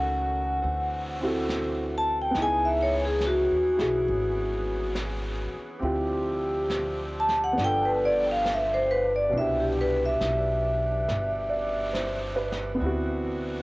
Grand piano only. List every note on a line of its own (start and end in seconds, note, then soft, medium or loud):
0.00 0.64 C#4 soft
0.00 0.64 D#4 soft
0.00 0.65 F#4 soft
0.00 0.65 A4 medium
1.21 2.35 C4 soft
1.21 2.36 E4 soft
1.21 2.37 F#4 soft
1.25 2.37 A4 medium
2.31 5.80 B3 medium
2.31 5.82 D#4 medium
2.38 3.76 E4 medium
2.42 3.79 G#4 medium
3.77 5.80 E4 soft
3.77 5.82 F#4 soft
3.77 5.83 G#4 soft
5.80 7.56 C4 medium
5.80 7.57 E4 soft
5.80 7.58 F4 soft
5.85 7.59 G4 medium
7.53 9.31 B3 soft
7.53 9.31 D4 soft
7.60 9.35 F4 soft
7.60 9.36 A4 medium
9.29 12.79 B2 medium
9.29 12.81 D4 soft
9.36 12.81 E4 soft
9.41 12.85 G4 medium
11.49 12.11 D5 soft
11.93 12.62 C5 soft
12.36 12.98 B4 soft
12.75 13.62 B3 medium
12.75 13.62 C4 soft
12.82 13.62 E4 medium
12.82 13.62 F#4 medium